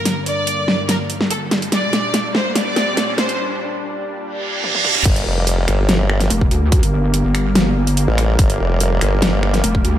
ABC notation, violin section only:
X:1
M:4/4
L:1/8
Q:1/4=144
K:Gm
V:1 name="Violin section"
B d3 B z A z | d3 c d3 c | z8 | z8 |
z8 | z8 |]